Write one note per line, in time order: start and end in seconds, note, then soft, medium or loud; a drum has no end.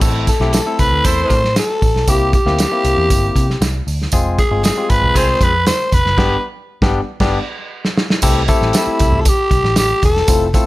0.01 0.29 A1 loud
0.01 0.29 A3 medium
0.01 0.30 C4 medium
0.01 0.30 E4 medium
0.01 0.30 A4 medium
0.01 kick loud
0.01 crash medium
0.01 tambourine medium
0.27 0.52 A4 medium
0.27 kick medium
0.27 closed hi-hat medium
0.27 tambourine medium
0.40 0.59 B1 medium
0.40 0.59 A3 medium
0.40 0.59 C4 medium
0.40 0.59 E4 medium
0.40 0.59 G4 medium
0.40 snare soft
0.53 0.82 A4 medium
0.53 snare loud
0.53 closed hi-hat medium
0.53 tambourine medium
0.66 1.40 A3 medium
0.66 1.41 C4 medium
0.66 1.40 E4 medium
0.66 1.41 A4 medium
0.79 0.88 C2 medium
0.79 1.08 B4 medium
0.79 kick medium
0.79 closed hi-hat medium
0.79 tambourine medium
0.92 1.01 D2 medium
1.05 1.23 E2 loud
1.05 1.41 E4 loud
1.05 1.41 A4 medium
1.05 1.41 C5 loud
1.05 1.57 C5 loud
1.05 kick loud
1.05 closed hi-hat medium
1.05 tambourine medium
1.30 1.58 A2 loud
1.30 kick medium
1.30 closed hi-hat medium
1.30 tambourine medium
1.44 snare soft
1.56 2.11 A4 loud
1.56 snare loud
1.56 closed hi-hat medium
1.56 tambourine medium
1.82 1.91 A1 medium
1.82 kick loud
1.82 open hi-hat medium
1.82 tambourine medium
1.95 2.04 B1 medium
1.95 snare soft
2.07 2.35 C2 loud
2.07 2.35 A#3 medium
2.07 2.36 C4 medium
2.07 2.35 E4 medium
2.07 2.36 G4 medium
2.07 2.34 G4 medium
2.07 kick loud
2.07 closed hi-hat medium
2.07 tambourine loud
2.33 3.84 G4 medium
2.33 kick loud
2.33 closed hi-hat medium
2.33 tambourine medium
2.46 2.64 D2 medium
2.46 2.65 A#3 medium
2.46 2.65 C4 medium
2.46 2.65 E4 medium
2.46 2.65 G4 medium
2.46 snare soft
2.59 snare loud
2.59 closed hi-hat medium
2.59 tambourine loud
2.72 3.46 A#3 medium
2.72 3.46 C4 medium
2.72 3.46 E4 medium
2.72 3.46 G4 medium
2.85 2.94 C2 medium
2.85 closed hi-hat medium
2.85 tambourine medium
2.97 3.12 E2 loud
3.10 3.29 G1 loud
3.10 kick loud
3.10 closed hi-hat medium
3.10 tambourine medium
3.36 3.54 C3 loud
3.36 kick medium
3.36 closed hi-hat medium
3.36 tambourine medium
3.50 snare soft
3.61 3.80 C2 loud
3.61 snare loud
3.61 closed hi-hat medium
3.61 tambourine medium
3.87 4.06 D2 medium
3.87 open hi-hat soft
3.87 tambourine medium
4.02 snare soft
4.12 4.41 F1 loud
4.12 4.41 G#3 medium
4.12 4.41 C4 medium
4.12 4.41 F4 medium
4.12 4.41 G#4 loud
4.12 kick loud
4.12 closed hi-hat medium
4.12 tambourine loud
4.12 muted conga medium
4.39 4.63 G#4 medium
4.39 kick loud
4.39 closed hi-hat medium
4.39 tambourine medium
4.51 4.70 G1 medium
4.51 4.70 G#3 medium
4.51 4.70 C4 medium
4.51 4.70 F4 medium
4.51 4.70 G#4 medium
4.63 4.91 G#4 medium
4.63 snare loud
4.63 closed hi-hat medium
4.63 tambourine loud
4.63 high conga medium
4.77 5.51 G#3 medium
4.77 5.51 C4 medium
4.77 5.51 F4 medium
4.77 4.83 G4 medium
4.84 5.55 G#4 medium
4.90 4.99 G#1 medium
4.90 5.18 B4 loud
4.90 kick medium
4.90 closed hi-hat medium
4.90 tambourine medium
5.02 5.12 B1 medium
5.02 low conga medium
5.15 5.34 C2 loud
5.15 5.52 C4 loud
5.15 5.52 F4 loud
5.15 5.52 G#4 loud
5.15 5.45 C5 loud
5.15 kick medium
5.15 closed hi-hat loud
5.15 tambourine medium
5.15 muted conga medium
5.41 5.69 F2 medium
5.41 5.67 B4 loud
5.41 kick medium
5.41 closed hi-hat medium
5.41 tambourine medium
5.41 muted conga soft
5.66 5.95 C5 loud
5.66 snare loud
5.66 closed hi-hat medium
5.66 tambourine medium
5.66 high conga medium
5.92 6.02 F1 loud
5.92 6.44 B4 loud
5.92 kick medium
5.92 closed hi-hat medium
5.92 tambourine medium
5.92 high conga medium
6.05 6.15 F#1 medium
6.05 snare soft
6.18 6.35 G1 loud
6.18 6.36 G3 loud
6.18 6.36 B3 loud
6.18 6.36 D4 medium
6.18 6.36 G4 loud
6.18 kick loud
6.18 snare loud
6.18 crash medium
6.82 6.99 G1 loud
6.82 7.00 G3 loud
6.82 7.00 B3 loud
6.82 7.00 D4 loud
6.82 7.00 G4 loud
6.82 kick loud
6.82 snare loud
7.20 7.38 G1 loud
7.20 7.38 G3 loud
7.20 7.38 B3 loud
7.20 7.38 D4 loud
7.20 7.38 G4 medium
7.20 kick loud
7.20 snare loud
7.20 crash medium
7.85 snare medium
7.98 snare medium
8.10 snare medium
8.22 8.51 C2 loud
8.22 8.41 A3 medium
8.22 8.42 C4 medium
8.22 8.42 E4 medium
8.22 8.42 G4 medium
8.22 8.41 A4 medium
8.22 kick loud
8.22 crash medium
8.22 tambourine loud
8.22 muted conga medium
8.48 9.23 A3 medium
8.48 9.23 C4 medium
8.48 9.23 E4 medium
8.48 9.23 G4 medium
8.48 9.23 A4 loud
8.48 kick loud
8.48 closed hi-hat medium
8.48 tambourine medium
8.48 muted conga soft
8.61 8.71 A1 medium
8.61 snare soft
8.73 9.22 E4 medium
8.73 snare loud
8.73 closed hi-hat medium
8.73 tambourine loud
8.73 high conga medium
8.87 muted picked electric bass stroke soft
8.99 9.28 C2 medium
8.99 kick loud
8.99 closed hi-hat medium
8.99 tambourine medium
9.12 low conga medium
9.21 9.30 A4 medium
9.25 9.78 G4 loud
9.25 kick medium
9.25 closed hi-hat loud
9.25 tambourine medium
9.25 muted conga medium
9.51 9.60 B1 loud
9.51 kick medium
9.51 closed hi-hat medium
9.51 tambourine medium
9.51 muted conga soft
9.64 9.92 A1 medium
9.64 snare soft
9.76 10.02 G4 loud
9.76 snare loud
9.76 closed hi-hat medium
9.76 tambourine loud
9.76 high conga medium
10.03 10.21 E1 medium
10.03 10.51 A4 loud
10.03 kick loud
10.03 closed hi-hat medium
10.03 tambourine medium
10.03 high conga medium
10.16 snare soft
10.28 10.56 F1 loud
10.28 10.47 A3 medium
10.28 10.47 C4 medium
10.28 10.47 E4 medium
10.28 10.47 F4 medium
10.28 10.47 A4 medium
10.28 kick loud
10.28 closed hi-hat medium
10.28 tambourine loud
10.28 muted conga medium
10.53 10.66 A3 medium
10.53 10.66 C4 medium
10.53 10.66 E4 medium
10.53 10.66 F4 medium
10.53 10.66 A4 medium
10.53 kick medium
10.53 closed hi-hat medium
10.53 tambourine medium
10.53 muted conga soft